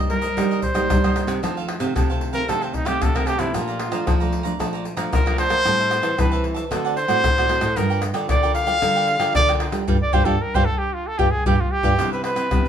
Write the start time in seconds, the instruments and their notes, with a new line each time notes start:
Already playing: nylon-string guitar G2 G3, cavaquinho D#5
0.00 cavaquinho A#4 C5
0.10 nylon-string guitar G3 A#3 D#4, trumpet A#4, pandeiro
0.21 cavaquinho A#4 C5 D#5, pandeiro, shaker
0.37 nylon-string guitar C3 G3 A#3 D#4, cavaquinho D#4 A#4 C5 D#5, pandeiro, tamborim, shaker, surdo
0.51 cavaquinho A#4 C5 D#5, pandeiro, shaker
0.62 trumpet C5, muted cavaquinho stroke, pandeiro, shaker, surdo
0.74 nylon-string guitar G3 A#3 D#4, cavaquinho A#4 C5 D#5, pandeiro, tamborim, shaker
0.90 nylon-string guitar G2 G3, pandeiro, tamborim, shaker, surdo
1.04 nylon-string guitar G3 A#3 D#4, cavaquinho A#4 C5 D#5, pandeiro, tamborim, shaker
1.15 cavaquinho D#4 A#4 C5 D#5, pandeiro, tamborim, shaker
1.27 nylon-string guitar C3, pandeiro, tamborim, shaker
1.42 nylon-string guitar F2 D#3 F3 A3 C4, cavaquinho D#4 A4 C5 F5, pandeiro, tamborim, shaker, surdo
1.57 cavaquinho A4 C5 F5, pandeiro, shaker
1.68 muted cavaquinho stroke, pandeiro, tamborim
1.80 nylon-string guitar C3 D#3 A3 C4, cavaquinho A4 C5 F5, pandeiro, tamborim, shaker
1.95 nylon-string guitar C3, cavaquinho D#4 A4 C5 F5, pandeiro, tamborim, shaker, surdo
2.10 nylon-string guitar D#3 A3 C4, cavaquinho A4 C5 F5, pandeiro, shaker
2.21 pandeiro
2.33 nylon-string guitar D#3 A3 C4, cavaquinho A4 C5 F5, trumpet A#4, pandeiro, shaker
2.48 nylon-string guitar F2 C3 D#3 A3 C4, cavaquinho D#4 A4 C5 F5, trumpet A4, pandeiro, tamborim, shaker, surdo
2.62 trumpet C4, cavaquinho A4 C5 F5, pandeiro, shaker
2.73 trumpet D#4, muted cavaquinho stroke, pandeiro, surdo
2.85 nylon-string guitar C3 D#3 A3 C4, trumpet G4, cavaquinho A4 C5 F5, pandeiro, tamborim, shaker
3.01 nylon-string guitar C3, trumpet A4, pandeiro, tamborim, shaker, surdo
3.15 nylon-string guitar D#3 A3 C4, cavaquinho A4 C5 F5, trumpet A#4, pandeiro, tamborim, shaker
3.26 cavaquinho D#4 A4 C5 F5, trumpet G4, pandeiro, tamborim, shaker
3.39 nylon-string guitar C3 F3 A3 D4, trumpet E4, pandeiro, tamborim, shaker
3.54 nylon-string guitar A#2, trumpet F4, cavaquinho A4 D5 F5 A#5, pandeiro, tamborim, shaker, surdo
3.68 cavaquinho D5 F5 A#5, pandeiro, shaker
3.79 muted cavaquinho stroke, pandeiro, tamborim
3.92 nylon-string guitar F3 A3 D4, cavaquinho D5 F5 A#5, pandeiro, tamborim, shaker
4.07 nylon-string guitar F2 F3, cavaquinho A4 D5 F5 A#5, pandeiro, tamborim, shaker, surdo
4.20 nylon-string guitar F3 A3 D4, cavaquinho D5 F5 A#5, pandeiro, shaker
4.33 pandeiro
4.43 nylon-string guitar F3 A3 D4, cavaquinho D5 F5 A#5, pandeiro, shaker
4.59 nylon-string guitar A#2 F3 A3 D4, cavaquinho A4 D5 F5 A#5, pandeiro, tamborim, shaker, surdo
4.73 cavaquinho D5 F5 A#5, pandeiro, shaker
4.85 muted cavaquinho stroke, pandeiro, shaker
4.97 nylon-string guitar F3 A3 D4, cavaquinho D5 F5 A#5, pandeiro, tamborim, shaker
5.12 nylon-string guitar F2 F3, trumpet A#4, pandeiro, tamborim, shaker, surdo
5.26 nylon-string guitar F3 A3 D4, cavaquinho D5 F5 A#5, pandeiro, tamborim, shaker
5.38 cavaquinho A4 D5 F5 A#5, trumpet C5, pandeiro, tamborim
5.50 nylon-string guitar A#3, pandeiro, tamborim, shaker
5.65 nylon-string guitar A2 G3 C4 E4, cavaquinho G4 C5 E5 A5, pandeiro, tamborim, shaker, surdo
5.79 cavaquinho C5 E5 A5, pandeiro, shaker
5.90 muted cavaquinho stroke, pandeiro, tamborim, shaker
6.02 nylon-string guitar E3, cavaquinho C5 E5 A5, pandeiro, tamborim, shaker
6.17 nylon-string guitar E3 G3 C4 E4, cavaquinho G4 C5 E5 A5, trumpet B4, pandeiro, tamborim, shaker, surdo
6.31 cavaquinho C5 E5 A5, pandeiro, shaker
6.44 pandeiro
6.54 cavaquinho C5 E5 A5, pandeiro, shaker
6.71 nylon-string guitar D3 A3 C4 F#4, cavaquinho D4 C5 D5 F#5, trumpet A4, pandeiro, tamborim, shaker, surdo
6.85 cavaquinho C5 D5 F#5, pandeiro, shaker
6.96 trumpet C5, muted cavaquinho stroke, pandeiro, shaker
7.08 nylon-string guitar A2 A3 C4 F#4, cavaquinho C5 D5 F#5, pandeiro, tamborim, shaker
7.24 nylon-string guitar A2, pandeiro, tamborim, shaker, surdo
7.38 nylon-string guitar A3 C4 F#4, cavaquinho C5 D5 F#5, pandeiro, tamborim, shaker
7.49 nylon-string guitar A3 C4 F#4, cavaquinho D4 C5 D5 F#5, pandeiro, tamborim
7.61 nylon-string guitar A2, pandeiro, tamborim, shaker
7.76 nylon-string guitar G2 G3 D4 F4 A#4, cavaquinho F4 A#4 D5 G5, trumpet A#4, pandeiro, tamborim, shaker, surdo
7.90 cavaquinho A#4 D5 G5, pandeiro, shaker
8.02 muted cavaquinho stroke, pandeiro, tamborim, shaker
8.14 nylon-string guitar D3 D4 F4 A#4, cavaquinho A#4 D5 G5, pandeiro, tamborim, shaker
8.29 nylon-string guitar D3, cavaquinho F4 A#4 D5 G5, trumpet D5, pandeiro, tamborim, shaker, surdo
8.43 nylon-string guitar D4 F4 A#4, cavaquinho A#4 D5 G5, pandeiro, shaker
8.55 trumpet F5, pandeiro, shaker
8.67 nylon-string guitar D4 F4 A#4, cavaquinho A#4 D5 G5, pandeiro, shaker
8.82 nylon-string guitar D3 G3 D4 F4 A#4, cavaquinho F4 A#4 D5 G5, pandeiro, tamborim, shaker, surdo
8.96 cavaquinho A#4 D5 G5, pandeiro, shaker
9.08 muted cavaquinho stroke, pandeiro
9.19 nylon-string guitar D3 D4 F4 A#4, cavaquinho A#4 D5 G5, pandeiro, tamborim, shaker
9.35 nylon-string guitar D3, trumpet D5, pandeiro, tamborim, shaker, surdo
9.49 nylon-string guitar D4 F4 A#4, cavaquinho A#4 D5 G5, pandeiro, tamborim, shaker
9.60 cavaquinho F4 A#4 D5 G5, pandeiro, tamborim
9.72 nylon-string guitar G3 D4 F4 A#4, pandeiro, tamborim, shaker
9.88 nylon-string guitar G2 D4 F4 G4, cavaquinho D5 F5 G5, surdo
10.02 trumpet D5
10.13 nylon-string guitar G2 D4 F4 G4, trumpet C5, cavaquinho D5 F5 G5, surdo
10.25 nylon-string guitar G2 D4 F4 G4, trumpet A4, cavaquinho D5 F5 G5
10.41 trumpet A#4
10.54 nylon-string guitar G2 D4 F4 G4, trumpet C5, cavaquinho D5 F5 G5, surdo
10.65 trumpet A4
10.78 trumpet G4
10.94 trumpet F4
11.07 trumpet A4
11.18 nylon-string guitar G2 D4 F4 G4, trumpet G4, cavaquinho D5 F5 G5, surdo
11.31 trumpet G#4
11.46 nylon-string guitar G2 D4 F4 G4, trumpet G4, cavaquinho D5 F5 G5, surdo
11.60 trumpet F4
11.71 trumpet G4
11.83 nylon-string guitar G2 D4 F4 G4, cavaquinho D5 F5 G5, surdo
11.99 nylon-string guitar C3 G3 B3 E4, cavaquinho E4 B4 C5 E5, pandeiro, tamborim, shaker, surdo
12.13 trumpet B4, cavaquinho B4 C5 E5, pandeiro, shaker
12.24 cavaquinho E4 B4 C5 E5, trumpet B4, pandeiro, tamborim
12.36 nylon-string guitar C4, cavaquinho E4 B4 C5 E5, pandeiro, tamborim, shaker
12.51 nylon-string guitar G2 C3 G3 B3 E4, pandeiro, tamborim, shaker, surdo
12.65 pandeiro, shaker